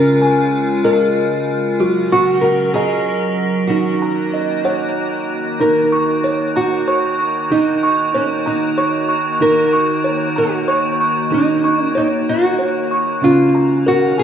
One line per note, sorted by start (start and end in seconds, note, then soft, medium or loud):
0.00 1.75 C#3 medium
0.00 1.76 C#3 medium
0.00 1.75 G#3 medium
0.00 0.53 C#4 medium
0.00 1.75 F4 medium
0.00 0.84 A#4 medium
0.22 1.16 G#5 medium
0.84 1.52 G#4 medium
0.84 1.48 A#4 medium
0.84 1.80 D#5 medium
1.79 3.68 F#3 medium
1.79 3.66 F#3 medium
1.79 3.68 C#4 medium
1.79 2.43 F#4 medium
1.79 3.68 A#4 medium
2.12 2.41 F#4 medium
2.12 3.07 C#6 medium
2.41 2.73 A#4 medium
2.41 3.39 F#5 medium
2.74 3.65 G#4 medium
2.74 3.39 D#5 medium
2.74 3.70 A#5 medium
3.67 5.58 D#3 medium
3.67 5.56 D#3 medium
3.67 5.58 A#3 medium
3.67 4.34 D#4 medium
3.67 5.23 F#4 medium
3.67 5.58 F#4 medium
4.02 4.97 A#5 medium
4.34 5.29 D#5 medium
4.65 5.28 C#5 medium
4.65 5.60 F#5 medium
5.59 7.46 D#3 medium
5.59 13.18 D#3 medium
5.59 13.18 A#3 medium
5.59 6.24 D#4 medium
5.59 13.19 F#4 medium
5.59 6.56 A#4 medium
5.92 6.87 C#6 medium
6.24 6.86 C#5 medium
6.56 7.54 F#4 medium
6.56 7.51 A#5 medium
6.88 7.51 C#5 medium
6.88 7.18 C#6 medium
7.19 7.82 C#6 medium
7.50 9.37 D#3 medium
7.50 8.15 D#4 medium
7.83 8.77 C#6 medium
8.14 8.23 C#4 medium
8.14 8.76 C#5 medium
8.46 9.14 D#4 medium
8.46 9.41 A#5 medium
8.78 9.41 C#5 medium
8.78 9.07 C#6 medium
9.09 9.72 C#6 medium
9.40 11.27 D#3 medium
9.40 10.05 D#4 medium
9.40 10.38 A#4 medium
9.73 10.67 C#6 medium
10.04 10.67 C#5 medium
10.36 11.36 F#4 medium
10.36 11.32 A#5 medium
10.68 11.32 C#5 medium
10.68 10.99 C#6 medium
11.01 11.63 C#6 medium
11.31 13.18 D#3 medium
11.31 11.95 D#4 medium
11.31 11.83 D#4 medium
11.64 12.59 C#6 medium
11.83 11.96 C#4 medium
11.95 12.06 D#4 medium
11.95 12.58 C#5 medium
12.29 12.96 F#4 medium
12.59 13.22 C#5 medium
12.91 13.54 C#6 medium
13.21 14.23 C#3 medium
13.21 14.23 G#3 medium
13.21 13.86 C#4 medium
13.21 13.87 F4 medium
13.21 14.23 F5 medium
13.55 14.23 A#5 medium
13.86 14.19 F#4 medium
13.86 14.23 A#4 medium
14.18 14.23 G#4 medium
14.18 14.23 G#5 medium